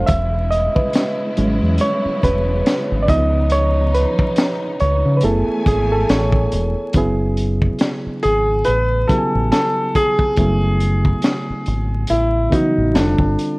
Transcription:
0.00 0.10 G3 medium
0.00 0.11 A3 soft
0.00 0.10 D4 medium
0.00 0.11 A4 medium
0.00 0.11 C5 loud
0.06 0.67 E1 medium
0.06 5.19 C#3 medium
0.06 3.06 G#3 medium
0.06 6.90 B3 medium
0.06 3.06 E4 medium
0.06 0.52 E5 loud
0.06 kick loud
0.06 closed hi-hat medium
0.51 0.74 D#5 medium
0.51 closed hi-hat medium
0.76 1.16 B4 medium
0.76 kick medium
0.93 snare loud
0.93 closed hi-hat medium
1.37 1.59 G#1 medium
1.37 2.62 F#3 medium
1.37 2.62 G#3 medium
1.37 2.62 C#4 medium
1.37 closed hi-hat medium
1.62 1.78 E2 loud
1.78 2.21 C#5 loud
1.78 closed hi-hat medium
2.06 muted fingered electric bass stroke soft
2.23 2.61 E1 loud
2.23 2.99 B4 loud
2.23 kick medium
2.23 closed hi-hat medium
2.66 snare medium
2.66 closed hi-hat medium
2.92 3.07 G#1 medium
3.03 3.09 D5 medium
3.08 4.04 C#2 loud
3.08 5.21 F3 medium
3.08 5.19 F3 medium
3.08 5.19 B3 medium
3.08 5.21 D#4 medium
3.08 5.19 D#4 medium
3.08 3.53 D#5 loud
3.08 kick medium
3.08 closed hi-hat medium
3.50 3.92 C#5 loud
3.50 closed hi-hat medium
3.95 4.83 B4 loud
3.95 closed hi-hat medium
4.19 kick loud
4.36 snare loud
4.36 closed hi-hat medium
4.80 5.02 C#2 medium
4.80 5.18 C#5 medium
4.80 closed hi-hat medium
5.05 5.21 C#3 loud
5.17 5.23 B4 medium
5.17 closed hi-hat medium
5.23 5.45 F#1 medium
5.23 6.93 E3 medium
5.23 6.93 A3 medium
5.23 6.91 A3 soft
5.23 6.91 B3 medium
5.23 6.91 E4 medium
5.23 5.67 G#4 medium
5.23 5.68 A4 medium
5.23 6.93 G#5 medium
5.48 muted fingered electric bass stroke soft
5.66 6.03 G#1 loud
5.66 5.92 G#4 medium
5.66 kick loud
5.66 closed hi-hat medium
5.92 6.08 A4 medium
6.09 6.46 A1 loud
6.09 6.49 C#5 medium
6.09 snare loud
6.09 closed hi-hat medium
6.32 kick medium
6.52 6.73 E1 loud
6.52 closed hi-hat medium
6.93 7.69 F#1 medium
6.93 8.49 C#3 medium
6.93 8.49 F#3 medium
6.93 8.49 B3 medium
6.93 kick loud
6.93 closed hi-hat medium
6.97 8.50 E4 medium
6.97 8.50 G#4 medium
7.37 closed hi-hat medium
7.62 kick medium
7.79 snare loud
7.79 closed hi-hat medium
8.06 muted fingered electric bass stroke soft
8.23 8.61 G#1 medium
8.23 8.67 G#4 medium
8.23 closed hi-hat medium
8.64 9.04 A1 medium
8.64 9.09 B4 loud
8.64 closed hi-hat medium
9.08 10.24 C#3 medium
9.08 10.25 F#3 medium
9.08 10.25 B3 medium
9.08 10.25 E4 medium
9.08 9.18 G4 medium
9.08 9.50 A4 medium
9.08 kick medium
9.08 closed hi-hat medium
9.18 10.29 G#5 medium
9.35 9.50 A1 medium
9.52 9.96 A4 medium
9.52 snare medium
9.52 closed hi-hat medium
9.95 12.16 G#4 loud
9.95 kick medium
9.95 closed hi-hat medium
10.19 kick medium
10.37 11.12 F#1 loud
10.37 11.91 C#3 medium
10.37 11.92 F#3 medium
10.37 11.93 A3 medium
10.37 11.92 B3 medium
10.37 11.92 E4 medium
10.37 kick loud
10.37 closed hi-hat medium
10.80 closed hi-hat medium
11.05 kick medium
11.22 snare loud
11.22 closed hi-hat medium
11.50 muted fingered electric bass stroke soft
11.66 12.04 G#1 medium
11.66 closed hi-hat medium
12.07 12.47 A1 medium
12.07 12.53 E4 medium
12.07 closed hi-hat medium
12.50 12.94 C#3 medium
12.50 12.95 E3 medium
12.50 12.94 F#3 medium
12.50 12.94 B3 medium
12.50 12.96 D#4 medium
12.50 12.95 F#4 medium
12.50 kick medium
12.50 closed hi-hat medium
12.78 12.93 A1 medium
12.93 13.16 F1 medium
12.93 13.59 D3 medium
12.93 13.59 G3 medium
12.93 13.59 C4 medium
12.93 13.58 D4 medium
12.93 13.59 F4 medium
12.93 13.59 A4 medium
12.93 snare medium
12.93 closed hi-hat medium
13.18 13.35 G1 medium
13.18 kick medium
13.39 closed hi-hat medium

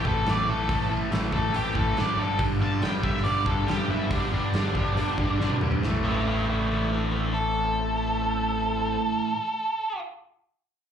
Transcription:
0.00 2.15 A3 medium
0.00 2.16 C4 medium
0.00 2.15 E4 medium
0.00 2.15 A4 medium
0.05 0.23 A1 medium
0.05 0.26 A2 medium
0.05 0.27 E3 medium
0.05 0.27 A3 medium
0.05 0.27 A4 medium
0.05 kick medium
0.26 0.44 A1 medium
0.26 0.47 A2 medium
0.26 0.47 E3 medium
0.26 0.48 A3 medium
0.26 0.49 D5 medium
0.26 snare loud
0.26 open hi-hat soft
0.48 0.66 A1 medium
0.48 0.69 A2 medium
0.48 0.70 E3 medium
0.48 0.70 A3 medium
0.48 0.90 A4 medium
0.69 0.87 A1 medium
0.69 0.89 A2 medium
0.69 0.90 E3 medium
0.69 0.90 A3 loud
0.69 kick loud
0.69 open hi-hat soft
0.90 1.08 A1 medium
0.90 1.10 A2 medium
0.90 1.10 E3 medium
0.90 1.11 A3 medium
1.10 1.29 A1 medium
1.10 1.32 A2 medium
1.10 1.32 E3 medium
1.10 1.32 A3 medium
1.10 snare loud
1.10 open hi-hat medium
1.32 1.51 A1 medium
1.32 1.51 A2 medium
1.32 1.52 E3 medium
1.32 1.52 A3 medium
1.32 1.54 A4 medium
1.32 kick medium
1.53 1.72 A1 medium
1.53 1.73 A2 medium
1.53 1.74 E3 medium
1.53 1.74 A3 medium
1.53 1.76 G4 medium
1.53 open hi-hat medium
1.74 1.94 A1 medium
1.74 1.95 A2 medium
1.74 1.96 E3 medium
1.74 1.96 A3 medium
1.74 1.97 A4 medium
1.74 kick medium
1.97 2.15 A1 medium
1.97 2.17 A2 medium
1.97 2.17 E3 loud
1.97 2.17 A3 medium
1.97 2.20 D5 medium
1.97 snare medium
1.97 open hi-hat soft
2.17 2.36 G1 medium
2.17 2.39 G2 medium
2.17 2.39 D3 loud
2.17 5.78 G3 medium
2.17 2.40 G3 loud
2.17 5.78 B3 medium
2.17 5.78 D4 medium
2.17 5.78 G4 medium
2.17 2.40 A4 loud
2.39 2.57 G1 medium
2.39 2.60 G2 medium
2.39 2.60 D3 loud
2.39 2.61 G3 medium
2.39 kick loud
2.39 open hi-hat soft
2.60 2.79 G1 medium
2.60 2.82 G2 medium
2.60 2.81 D3 medium
2.60 2.82 G3 medium
2.60 2.82 A5 loud
2.82 3.00 G1 medium
2.82 3.03 G2 medium
2.82 3.02 D3 medium
2.82 3.04 G3 medium
2.82 3.03 G5 medium
2.82 snare medium
2.82 open hi-hat soft
3.03 3.22 G1 medium
3.03 3.24 G2 medium
3.03 3.25 D3 medium
3.03 3.25 G3 medium
3.03 3.23 E5 medium
3.03 kick medium
3.17 snare soft
3.24 3.43 G1 medium
3.24 3.45 G2 medium
3.24 3.46 D3 medium
3.24 3.47 G3 medium
3.24 3.45 D5 medium
3.24 open hi-hat soft
3.46 3.64 G1 medium
3.46 3.66 G2 medium
3.46 3.67 D3 medium
3.46 3.67 G3 medium
3.46 3.67 A4 medium
3.46 kick medium
3.67 3.86 G1 medium
3.67 3.88 G2 medium
3.67 3.89 D3 medium
3.67 3.90 G3 loud
3.67 3.88 G4 medium
3.67 snare loud
3.67 open hi-hat soft
3.89 4.07 G1 medium
3.89 4.11 G2 medium
3.89 4.11 D3 medium
3.89 4.11 G3 medium
3.89 4.10 E4 medium
4.10 4.29 G1 medium
4.10 4.31 G2 medium
4.10 4.31 D3 medium
4.10 4.32 G3 loud
4.10 4.30 D4 medium
4.10 kick medium
4.10 open hi-hat medium
4.32 4.50 G1 medium
4.32 4.53 G2 medium
4.32 4.54 D3 medium
4.32 4.54 G3 medium
4.32 5.56 D4 medium
4.54 4.72 G1 medium
4.54 4.75 G2 medium
4.54 4.75 D3 medium
4.54 4.76 G3 medium
4.54 snare loud
4.54 open hi-hat medium
4.75 4.93 G1 medium
4.75 4.96 G2 medium
4.75 4.97 D3 medium
4.75 4.97 G3 medium
4.75 kick medium
4.95 5.14 G1 medium
4.95 5.18 G2 medium
4.95 5.18 D3 medium
4.95 5.19 G3 medium
4.95 open hi-hat soft
5.18 5.36 G1 medium
5.18 5.39 G2 medium
5.18 5.39 D3 medium
5.18 5.40 G3 medium
5.18 kick medium
5.39 5.57 G1 medium
5.39 5.61 G2 medium
5.39 5.61 D3 medium
5.39 5.62 G3 medium
5.39 snare medium
5.50 high tom medium
5.61 5.79 D2 medium
5.61 5.81 G2 medium
5.61 5.81 D3 medium
5.61 5.82 G3 medium
5.61 mid tom medium
5.72 floor tom medium
5.82 8.96 A1 medium
5.82 9.33 A2 medium
5.82 9.35 E3 medium
5.82 8.98 A3 medium
5.82 8.98 C4 medium
5.82 8.98 E4 medium
5.82 8.99 A4 medium
5.82 snare medium
5.87 9.37 A3 medium
6.04 6.25 D4 medium
6.04 6.25 G4 medium
6.26 6.45 D4 medium
6.26 6.47 G4 medium
6.49 6.67 C4 medium
6.49 6.68 E4 medium
6.71 6.89 C4 medium
6.71 6.90 E4 medium
6.92 7.10 A3 medium
6.92 7.11 D4 medium
7.12 7.31 A3 medium
7.12 7.32 D4 medium
7.34 10.00 A4 medium

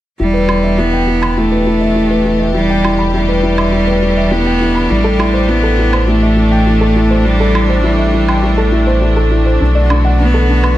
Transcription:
0.20 4.87 E1 medium
0.20 10.78 E3 medium
0.20 0.81 G3 medium
0.20 0.34 E4 medium
0.29 10.78 A3 medium
0.34 0.42 B4 medium
0.48 0.63 E4 medium
0.48 low woodblock medium
0.63 10.78 D4 medium
0.63 0.77 E5 medium
0.78 1.40 B3 medium
0.78 0.86 E4 medium
0.78 9.61 G4 medium
0.93 1.01 G5 medium
1.07 1.16 E4 medium
1.22 1.36 B5 medium
1.22 low woodblock soft
1.37 2.55 A3 medium
1.37 1.51 E4 medium
1.52 1.60 B4 medium
1.66 1.80 E4 medium
1.81 1.95 E5 medium
1.95 2.10 E4 medium
2.10 2.19 B4 medium
2.25 2.39 E4 medium
2.39 2.54 E5 medium
2.54 3.10 G3 medium
2.54 2.63 E4 medium
2.69 2.78 G5 medium
2.84 2.93 E4 medium
2.84 low woodblock medium
2.99 3.13 B5 medium
3.14 4.33 G3 medium
3.14 3.28 E4 medium
3.28 3.37 B4 medium
3.43 3.57 E4 medium
3.58 3.72 E5 medium
3.58 low woodblock soft
3.72 3.86 E4 medium
3.87 3.95 B4 medium
4.02 4.16 E4 medium
4.17 4.31 E5 medium
4.31 4.92 B3 medium
4.31 4.40 E4 medium
4.46 4.54 G5 medium
4.61 4.69 E4 medium
4.75 4.89 B5 medium
4.90 9.58 A1 medium
4.90 5.50 G3 medium
4.90 5.04 E4 medium
5.04 5.13 A4 medium
5.19 5.33 E4 medium
5.19 low woodblock soft
5.34 5.48 C5 medium
5.49 6.10 B3 medium
5.49 5.63 E4 medium
5.63 5.72 A4 medium
5.78 5.92 E4 medium
5.93 6.07 C5 medium
5.93 low woodblock soft
6.08 7.27 A3 medium
6.08 6.16 E4 medium
6.22 6.31 E5 medium
6.36 6.45 E4 medium
6.51 6.65 G5 medium
6.66 6.80 E4 medium
6.81 6.89 A4 medium
6.96 7.10 E4 medium
7.10 7.24 C5 medium
7.25 7.84 G3 medium
7.25 7.39 E4 medium
7.40 7.48 A4 medium
7.55 7.69 E4 medium
7.55 low woodblock soft
7.69 7.83 C5 medium
7.84 8.98 G3 medium
7.84 7.92 E4 medium
7.99 8.07 E5 medium
8.13 8.22 E4 medium
8.28 8.42 G5 medium
8.28 low woodblock soft
8.43 8.57 E4 medium
8.58 8.66 A4 medium
8.72 8.86 E4 medium
8.87 9.01 C5 medium
9.02 9.16 E4 medium
9.16 9.25 A4 medium
9.31 9.45 E4 medium
9.46 9.60 C5 medium
9.60 10.78 B1 medium
9.60 9.69 D4 medium
9.75 10.78 F#4 medium
9.75 9.84 D5 medium
9.90 9.98 D4 medium
9.90 low woodblock medium
10.05 10.19 F#5 medium
10.19 10.78 B3 medium
10.19 10.33 D4 medium
10.34 10.42 A4 medium
10.49 10.63 D4 medium
10.63 10.77 B4 medium
10.63 low woodblock soft

